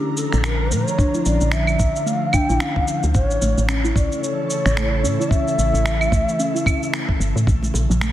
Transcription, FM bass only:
0.34 A#1
0.72 A#2
1.26 A#1
1.41 A#1
1.80 A#1
2.50 A#1
3.04 D2
3.15 A1
3.42 A1
3.58 A1
3.96 A1
4.66 A1
5.04 A2
5.58 A1
5.74 A1
6.12 A1
7.20 G1
7.36 A2
7.47 A#1
7.74 A#1
7.90 A#1

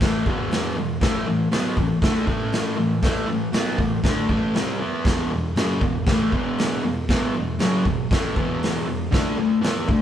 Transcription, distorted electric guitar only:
0.02 A2 E3 A3
0.27 E2 B2 E3
0.76 E2 B2
1.01 A2 E3 A3
1.27 A2 E3
1.52 B2 F#3 B3
1.78 A2 E3
2.02 D3 A3 D4
2.26 A2 E3 A3
2.77 A2 E3
3.02 A2 E3 A3
3.27 A2 E3
3.53 B2 F#3 B3
3.79 A2 E3
4.04 D3 A3 D4
4.30 A2 E3 A3
4.55 C3 G3 C4
4.80 E3 B3 E4
5.06 E2 B2 E3
5.31 E2 B2
5.56 F#2 C#3 F#3
5.82 E2 B2
6.06 A2 E3 A3
6.33 E2 B2 E3
6.84 E2 B2
7.09 E2 B2 E3
7.35 E2 B2
7.59 F#2 C#3 F#3
7.85 E2 B2
8.11 A2 E3 A3
8.36 E2 B2 E3
8.87 E2 B2
9.11 D3 A3 D4
9.38 D3 A3
9.61 E3 B3 E4
9.88 D3 A3

